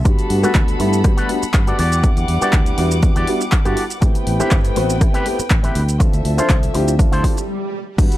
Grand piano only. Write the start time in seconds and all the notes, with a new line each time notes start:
0.05 G3 A3 B3 D4 F#4
0.43 G3 A3 B3 D4 F#4
0.79 G3 A3 B3 D4 E4
1.05 F#4
1.29 G3 A3 B3 D4 F#4
1.67 G3 A3 B3 D4 F#4
2.03 G3 B3 D4 E4 F#5
2.41 G3 B3 D4 E4 F#5
2.78 G3 B3 D4 E4 F#4
3.02 G3 B3 D4 E4 F#4
3.27 G3 B3 D4 E4 F#4
3.65 G3 B3 D4 E4 F#4
4.01 A3 B3 C4 E4 G4
4.39 A3 C4 E4 G4 B4
4.76 A3 B3 C4 E4 F#4
5.01 A3 C4 E4
5.26 A3 B3 C4 E4 G4
5.64 A3 B3 C4 E4 G4
6.00 C4 D4 F4 A4 E5
6.38 F3 C4 D4 A4 E5
6.74 C4 D4 E4 F4 G4
6.99 F4 A4
7.24 C4 D4 E4 F4 A4
7.98 G3 A3 B3 D4 F#4